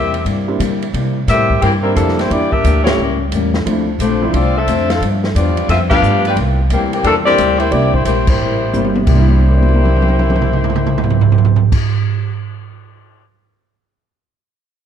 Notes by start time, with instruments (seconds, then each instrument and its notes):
Already playing: upright bass E2, steel-string acoustic guitar C3 G3 A#3 E4, saxophone section C4 G4 A#4 E5
0.14 ride
0.24 upright bass G2, steel-string acoustic guitar C3 G3 A#3 E4, kick, ride
0.48 grand piano G3 A#3 C4 D4 E4
0.59 steel-string acoustic guitar C3 G3 A#3 E4, upright bass D3, kick, hi-hat pedal, ride
0.82 ride
0.93 upright bass C3, steel-string acoustic guitar C3 G3 A#3 E4, kick, ride
1.28 upright bass A2, steel-string acoustic guitar C3 G3 A#3 E4, saxophone section C4 G4 A#4 E5, kick, snare, hi-hat pedal, ride
1.50 kick
1.62 upright bass G2, steel-string acoustic guitar C3 G3 A#3 E4, saxophone section E3 A#3 C4 G4, kick, ride
1.82 saxophone section G3 C4 E4 A#4, grand piano G3 A#3 C4 D4 E4
1.95 upright bass F2, steel-string acoustic guitar C3 G3 A#3 E4, saxophone section F3 A#3 D4 A4, kick, hi-hat pedal, ride
2.08 snare
2.18 saxophone section A#3 E4 G4 C5, snare, ride
2.30 upright bass E2, steel-string acoustic guitar E3 A#3 D4 G4, grand piano E3 G3 A#3 D4 E4, saxophone section A#3 E4 G4 D5, kick, ride
2.52 saxophone section D4 G4 A#4 E5, kick
2.64 upright bass D2, steel-string acoustic guitar E3 A#3 D4 G4, kick, hi-hat pedal, ride
2.84 grand piano G3 A3 A#3 C#4 G4, saxophone section A#3 E4 G4 C#5, snare, ride
2.98 upright bass C#2, steel-string acoustic guitar A2 G3 A#3 C#4
3.32 upright bass E2, steel-string acoustic guitar A2 G3 A#3 C#4, kick, hi-hat pedal, ride
3.54 snare
3.65 upright bass D2, steel-string acoustic guitar D3 A3 C4, grand piano F3 A3 C4 D4 E4, kick, ride
3.69 steel-string acoustic guitar F4
3.99 upright bass A#1, steel-string acoustic guitar D3 A3 C4 F4, saxophone section A3 D4 F4 C5, kick, hi-hat pedal, ride
4.22 grand piano F3 A3 C4 D4 E4
4.33 upright bass C2, steel-string acoustic guitar D3 A3 C4 F4, saxophone section C4 F4 A4 D5, kick, ride
4.57 saxophone section D4 A4 C5 E5
4.67 upright bass F2, steel-string acoustic guitar D3 A3 C4 F4, kick, hi-hat pedal, ride
4.90 saxophone section D4 A4 C5 F5, snare, ride
5.01 upright bass G2, steel-string acoustic guitar G2 F3 B3 D4, kick, ride
5.24 snare
5.35 upright bass E2, steel-string acoustic guitar G2 F3 B3 D4, saxophone section B3 F4 G4 D5, kick, hi-hat pedal, ride
5.57 ride
5.68 upright bass F2, steel-string acoustic guitar G2 F3 B3 D4, saxophone section C4 F4 A4 E5, kick, snare, ride
5.90 grand piano G3 A3 B3 D4 F4, saxophone section D4 G4 B4 F5, kick, crash
6.02 upright bass G2, steel-string acoustic guitar G2 F3 B3 D4, hi-hat pedal
6.25 saxophone section F4 B4 D5 G5, ride
6.35 upright bass C2, steel-string acoustic guitar C3 G3 A#3 E4, kick, ride
6.70 upright bass D2, steel-string acoustic guitar C3 G3 A#3 E4, saxophone section E3 A#3 C4 G4, kick, hi-hat pedal, ride
6.93 saxophone section E3 A#3 C4 G4, ride
7.03 upright bass E2, steel-string acoustic guitar C3 G3 A#3 E4, saxophone section F3 A#3 D4 A4, kick, ride
7.25 grand piano G3 A#3 C4 D4 E4, saxophone section C4 G4 A#4 D5, snare
7.37 upright bass D2, steel-string acoustic guitar C3 G3 A#3 E4, kick, hi-hat pedal, ride
7.58 saxophone section A#3 E4 G4 C5, ride
7.70 upright bass C2, steel-string acoustic guitar C3 G3 A#3, grand piano G3 A#3 C4 D4 E4, saxophone section A#3 E4 G4 D5, kick, ride
7.75 steel-string acoustic guitar E4
7.94 saxophone section A#3 E4 G4 C5, kick
8.05 upright bass A#1, steel-string acoustic guitar C3 G3 A#3 E4, saxophone section A#3 E4 G4 C5, kick, hi-hat pedal, ride
8.27 saxophone section A#3 E4 G4 C5, kick, crash
8.40 upright bass A1, steel-string acoustic guitar C3 G3 A#3 E4
8.73 upright bass G1, steel-string acoustic guitar C3 G3 A#3 E4, grand piano G3 A#3 C4 D4 E4, hi-hat pedal, high tom
8.85 high tom
8.94 grand piano C3, high tom
9.00 steel-string acoustic guitar C3, grand piano G3
9.07 upright bass C2, steel-string acoustic guitar G3, grand piano A#3, saxophone section A#3 E4 G4 C5, kick, crash
9.12 steel-string acoustic guitar A#3 E4, grand piano D4
9.19 grand piano E4
9.29 high tom
9.34 high tom
9.41 grand piano G4, high tom
9.49 grand piano A#4, high tom
9.57 grand piano D5
9.63 grand piano G5, high tom
9.68 high tom
9.74 grand piano A#5, high tom
9.85 grand piano D6, mid tom
9.96 grand piano G6, mid tom
10.02 mid tom
10.08 grand piano A#6, mid tom
10.19 mid tom
10.30 mid tom
10.36 mid tom
10.42 mid tom
10.53 mid tom
10.64 mid tom
10.70 mid tom
10.76 mid tom
10.87 mid tom
10.98 mid tom
11.04 floor tom
11.10 floor tom
11.21 floor tom
11.32 floor tom
11.38 floor tom
11.45 floor tom
11.56 floor tom
11.72 kick, crash